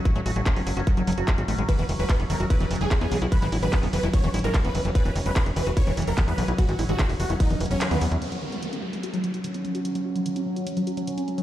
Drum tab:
RD |--------------------------------|x-------x-------x-------x-------|x-------x-------x-------x-------|x-------x-------x-------x-------|
HH |x-x-o-x-x-o-o-x-x-x-oxx-x-x-o-x-|x-x-o-x-x-x-o-x-x-x-oxx-x-x-o-x-|x-x-o-x-x-o-o-x-x-x-oxx-x-x-o-x-|x-x-o-x-x-x-o-x-x-x-oxx-x-x-o-x-|
CP |--------x-x-------------x-------|--------x---------------x-------|--------x-x-------------x-------|--------x---------------x-------|
BD |o-------o-------o-------o-------|o-------o-------o-------o-------|o-------o-------o-------o-------|o-------o-------o-------o-------|

RD |x-------x-------x-------x-------|--------------------------------|--------------------------------|
HH |x-x-o-x-x-o-o-x-x-x-oxx-x-x-o-x-|x-x---x-x-x---x-x-x-x-x-x-x-x-x-|x-x---x-x-x---x-x-x-x-x-x-x-x-x-|
CP |--------x-x-------------x-------|--------------------------------|--------------------------------|
BD |o-------o-------o---------------|--------------------------------|--------------------------------|